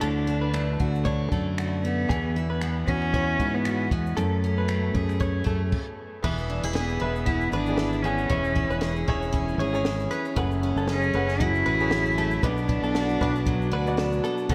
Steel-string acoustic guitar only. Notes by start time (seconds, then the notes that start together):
Already playing: A3 F#4
0.01 D3
0.27 D4
0.54 A3
0.80 F#4
1.05 D4
1.32 A3
1.58 F#4
1.85 A3
2.11 E3
2.36 E4
2.62 B3
2.88 F#4
3.14 E4
3.40 B3
3.66 F#4
3.92 B3
4.17 F#2
4.44 C#4
4.68 A3
4.95 G#4
5.20 C#4
5.44 A3
6.24 E3
6.50 D4
6.63 E4
6.73 G#4
7.00 E4
7.26 B3
7.53 G#4
7.79 E4
8.04 B3
8.30 E3
8.55 E4
8.81 G#4
9.08 E4
9.33 C#4
9.60 G#4
9.86 E4
10.11 C#4
10.36 F#2
10.63 C#4
10.89 G#4
11.14 C#4
11.41 F#3
11.66 G#4
11.92 C#4
12.18 A3
12.44 B2
12.69 D4
12.96 F#4
13.23 D4
13.47 F#3
13.71 F#4
13.97 D4
14.25 B3
14.49 D3